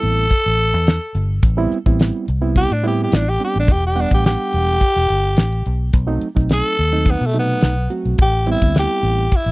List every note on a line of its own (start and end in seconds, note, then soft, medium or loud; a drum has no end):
0.00 0.27 A1 loud
0.00 0.24 G3 medium
0.00 0.25 B3 medium
0.00 0.25 C4 medium
0.00 0.25 E4 medium
0.00 1.41 A4 loud
0.00 closed hi-hat medium
0.18 closed hi-hat soft
0.31 kick medium
0.31 closed hi-hat medium
0.46 0.74 A1 medium
0.46 closed hi-hat soft
0.59 closed hi-hat medium
0.73 0.98 E2 medium
0.73 closed hi-hat soft
0.87 snare loud
0.87 closed hi-hat medium
1.01 closed hi-hat soft
1.15 1.39 G1 loud
1.15 closed hi-hat medium
1.43 1.67 A1 loud
1.43 kick loud
1.43 closed hi-hat medium
1.57 1.77 G3 medium
1.57 1.77 B3 medium
1.57 1.77 C4 medium
1.57 1.77 E4 loud
1.72 closed hi-hat medium
1.86 2.10 A1 medium
1.86 2.25 G3 medium
1.86 2.25 B3 medium
1.86 2.25 C4 medium
1.86 2.25 E4 medium
1.86 kick medium
1.86 closed hi-hat soft
2.00 snare loud
2.00 closed hi-hat medium
2.28 2.64 C2 loud
2.28 closed hi-hat medium
2.41 2.71 G3 medium
2.41 2.72 B3 medium
2.41 2.72 C4 medium
2.41 2.72 E4 medium
2.56 2.74 G4 loud
2.56 kick medium
2.56 closed hi-hat medium
2.70 3.06 A2 medium
2.70 2.85 D4 medium
2.70 closed hi-hat soft
2.83 3.23 G3 medium
2.83 3.24 B3 medium
2.83 3.24 C4 medium
2.83 3.24 E4 medium
2.83 closed hi-hat medium
2.87 3.00 G4 medium
2.99 closed hi-hat soft
3.04 3.17 G4 medium
3.12 3.36 A1 loud
3.12 3.30 D4 medium
3.12 snare loud
3.12 closed hi-hat medium
3.29 3.41 G4 medium
3.39 3.68 G3 medium
3.39 3.68 B3 medium
3.39 3.68 C4 medium
3.39 3.69 D4 medium
3.39 closed hi-hat medium
3.44 3.57 G4 medium
3.56 3.67 A1 medium
3.56 3.74 D4 medium
3.56 closed hi-hat soft
3.68 4.05 E1 loud
3.68 3.84 G4 medium
3.68 kick loud
3.68 closed hi-hat medium
3.87 4.02 G4 medium
3.95 4.75 G3 medium
3.95 4.75 B3 medium
3.95 4.75 D4 medium
3.95 4.75 F#5 medium
3.95 closed hi-hat medium
4.01 4.13 D4 medium
4.11 4.35 A1 medium
4.11 4.26 G4 medium
4.11 kick medium
4.11 closed hi-hat soft
4.25 5.91 G4 loud
4.25 snare loud
4.25 closed hi-hat medium
4.53 4.77 E1 loud
4.53 closed hi-hat medium
4.68 closed hi-hat soft
4.81 kick medium
4.81 closed hi-hat medium
4.96 5.09 E1 medium
4.96 snare soft
4.96 closed hi-hat soft
5.09 5.35 G1 medium
5.09 closed hi-hat medium
5.24 closed hi-hat soft
5.37 5.64 A1 medium
5.37 snare loud
5.37 closed hi-hat medium
5.52 closed hi-hat soft
5.66 5.92 B1 medium
5.66 closed hi-hat medium
5.93 6.17 B1 loud
5.93 kick loud
5.93 closed hi-hat medium
6.07 6.27 F#3 medium
6.07 6.27 A3 medium
6.07 6.27 C4 medium
6.07 6.27 D#4 medium
6.21 closed hi-hat medium
6.35 6.60 B1 medium
6.35 6.75 F#3 medium
6.35 6.75 A3 medium
6.35 6.75 C4 medium
6.35 6.75 D#4 medium
6.35 kick medium
6.35 closed hi-hat soft
6.49 7.12 A4 loud
6.49 snare loud
6.49 closed hi-hat medium
6.77 7.15 D#2 medium
6.77 closed hi-hat medium
6.92 7.22 F#3 medium
6.92 7.22 A3 medium
6.92 7.22 C4 medium
6.92 7.22 D#4 medium
7.06 kick medium
7.06 closed hi-hat medium
7.10 7.28 B3 medium
7.21 7.56 B2 medium
7.21 closed hi-hat soft
7.26 7.36 A3 medium
7.33 7.74 C3 medium
7.33 7.74 F#3 medium
7.33 7.74 A3 medium
7.33 7.74 D#4 medium
7.33 closed hi-hat medium
7.39 7.92 B3 medium
7.49 closed hi-hat soft
7.61 7.87 B1 loud
7.61 snare loud
7.61 closed hi-hat medium
7.90 8.19 F#3 medium
7.90 8.19 A3 soft
7.90 8.19 C4 medium
7.90 8.19 F#4 medium
7.90 closed hi-hat medium
8.05 8.17 B1 medium
8.05 closed hi-hat soft
8.18 8.55 A1 loud
8.18 8.48 G4 loud
8.18 kick loud
8.18 closed hi-hat medium
8.46 9.25 G3 medium
8.46 9.25 B3 medium
8.46 9.26 C4 medium
8.46 9.26 E4 medium
8.46 closed hi-hat medium
8.51 8.77 E4 loud
8.62 8.86 D2 medium
8.62 kick medium
8.62 closed hi-hat soft
8.75 snare loud
8.75 closed hi-hat medium
8.79 9.38 G4 loud
9.03 9.27 A1 medium
9.03 closed hi-hat medium
9.18 closed hi-hat soft
9.32 kick medium
9.32 closed hi-hat medium
9.36 9.52 E4 medium
9.46 9.52 A1 loud
9.46 closed hi-hat soft